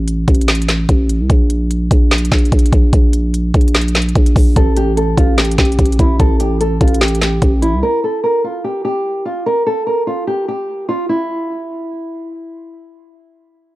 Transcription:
Already playing: A1
0.08 closed hi-hat
0.28 A1, kick, closed hi-hat
0.35 closed hi-hat
0.41 closed hi-hat
0.48 snare, clap, closed hi-hat
0.55 closed hi-hat
0.62 closed hi-hat
0.69 snare, clap, closed hi-hat
0.89 A1, kick, closed hi-hat
1.10 closed hi-hat
1.20 C2
1.30 A#1, kick, closed hi-hat
1.50 closed hi-hat
1.71 closed hi-hat
1.91 A#1, kick, closed hi-hat
2.11 snare, clap, closed hi-hat
2.18 closed hi-hat
2.25 closed hi-hat
2.32 A#1, kick, snare, clap, closed hi-hat
2.39 closed hi-hat
2.45 closed hi-hat
2.52 A#1, kick, closed hi-hat
2.59 closed hi-hat
2.66 closed hi-hat
2.73 A#1, kick, closed hi-hat
2.93 A#1, kick, closed hi-hat
3.13 closed hi-hat
3.34 closed hi-hat
3.54 A#1, kick, closed hi-hat
3.61 closed hi-hat
3.68 closed hi-hat
3.75 snare, clap, closed hi-hat
3.81 closed hi-hat
3.88 closed hi-hat
3.95 snare, clap, closed hi-hat
4.02 closed hi-hat
4.09 closed hi-hat
4.15 A#1, kick, closed hi-hat
4.26 closed hi-hat
4.36 A#1, kick, open hi-hat
4.56 A1 A4, kick, closed hi-hat
4.77 G4, closed hi-hat
4.97 A4, closed hi-hat
5.17 A1 F4, kick, closed hi-hat
5.38 G4, snare, clap, closed hi-hat
5.45 closed hi-hat
5.51 closed hi-hat
5.58 A1 G4, kick, snare, clap, closed hi-hat
5.65 closed hi-hat
5.72 closed hi-hat
5.79 A1, kick, closed hi-hat
5.86 closed hi-hat
5.92 closed hi-hat
5.99 A1 E4, kick, closed hi-hat
6.19 A1 A4, kick, closed hi-hat
6.40 G4, closed hi-hat
6.60 A4, closed hi-hat
6.81 A1 F4, kick, closed hi-hat
6.88 closed hi-hat
6.94 closed hi-hat
7.01 G4, snare, clap, closed hi-hat
7.08 closed hi-hat
7.15 closed hi-hat
7.22 G4, snare, clap, closed hi-hat
7.42 A1, kick, closed hi-hat
7.62 E4, closed hi-hat
7.73 C2
7.83 A#4
8.04 A4
8.24 A#4
8.44 F4
8.64 G4
8.85 G4
9.25 F4
9.46 A#4
9.67 A4
9.87 A#4
10.07 F4
10.27 G4
10.48 G4
10.89 F4
11.09 E4

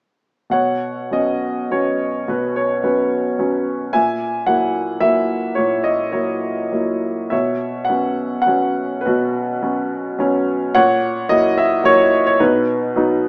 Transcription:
0.50 B2 C#5 F#5
1.11 F#3 B3 C#4 D#5
1.71 F#3 B3 C#4 C#5
2.28 B2 F#4 B4
2.56 C#5
2.83 F#3 B3 C#4 B4
3.39 F#3 B3 C#4
3.93 A#2 E5 G#5
4.46 F#3 A#3 E4 F#5
5.00 F#3 A#3 E4 E5
5.55 A#2 E4 C#5
5.84 D#5
6.12 F#3 A#3 E4 C#5
6.72 F#3 A#3 E4
7.30 B2 C#5 E5
7.85 F#5
7.89 F#3 B3 C#4
8.42 F#5
8.46 F#3 B3 C#4
9.01 B4
9.06 B2 F#4
9.62 F#3 B3 C#4
10.18 F#3 B3 C#4
10.75 A#2 C#5 F#5
11.29 F#3 A#3 E4 D#5
11.58 E5
11.83 F#3 A#3 E4 C#5
12.27 C#5
12.40 B2 D#4 B4
12.96 F#3 B3 D#4

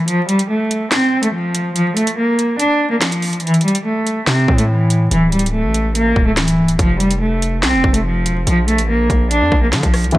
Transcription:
0.08 F3, closed hi-hat
0.29 G3, closed hi-hat
0.39 closed hi-hat
0.50 A3
0.71 closed hi-hat
0.92 C4, finger snap, snare, closed hi-hat
1.23 A3, closed hi-hat
1.34 F3
1.55 closed hi-hat
1.76 F3, closed hi-hat
1.97 A3, closed hi-hat
2.07 closed hi-hat
2.18 A#3
2.39 closed hi-hat
2.60 D4, closed hi-hat
2.91 A#3
3.01 F3, finger snap, snare, closed hi-hat
3.12 closed hi-hat
3.22 open hi-hat
3.33 closed hi-hat
3.40 E3, closed hi-hat
3.47 closed hi-hat
3.54 closed hi-hat
3.61 G3, closed hi-hat
3.68 closed hi-hat
3.75 closed hi-hat
3.85 A3
4.07 closed hi-hat
4.27 C3 C4, finger snap, snare, closed hi-hat
4.48 A2, kick
4.58 A3, closed hi-hat
4.69 E3
4.90 closed hi-hat
5.11 D1 E3, closed hi-hat
5.32 G3, closed hi-hat
5.39 closed hi-hat
5.46 closed hi-hat
5.53 A3
5.64 A1
5.74 closed hi-hat
5.95 A#3, closed hi-hat
6.16 D1, kick
6.27 A3
6.37 E3, finger snap, snare, closed hi-hat
6.48 closed hi-hat
6.58 C1
6.68 D1, closed hi-hat
6.79 F1 F3, kick, closed hi-hat
7.00 G3, closed hi-hat
7.11 closed hi-hat
7.21 A3
7.42 closed hi-hat
7.63 C2 C4, finger snap, snare, closed hi-hat
7.73 F1
7.84 F1, kick
7.94 A3, closed hi-hat
8.05 F3
8.26 E1, closed hi-hat
8.36 F1
8.47 A#1 F3, closed hi-hat
8.68 A3, closed hi-hat
8.78 A1, closed hi-hat
8.89 A#3
8.94 A#1
9.10 A#1, kick, closed hi-hat
9.31 D4, closed hi-hat
9.41 F2
9.52 A#1, kick
9.62 A#3
9.73 D3 F3, finger snap, snare, closed hi-hat
9.83 A#1, kick, closed hi-hat
9.94 cross-stick, open hi-hat
10.04 C2, closed hi-hat
10.11 A1 E3 A3, kick, closed hi-hat

